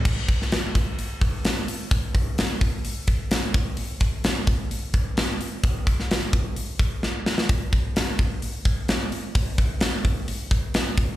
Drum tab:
CC |x---------------|----------------|----------------|----------------|
HH |--o-o-o-o-o-o-o-|o-o-o-o-o-o-o-o-|o-o-o-o-o-o-o-o-|o-o-o-o-o-o-----|
SD |---oo-------o---|----o-------o---|----o-------o---|---oo-------o-oo|
BD |o-o---o---o-----|o-o---o---o---o-|--o---o---o-----|o-o---o---o-----|

CC |----------------|----------------|
HH |o-o-o-o-o-o-o-o-|o-o-o-o-o-o-o-o-|
SD |----o-------o---|----o-------o---|
BD |o-o---o---o-----|o-o---o---o---o-|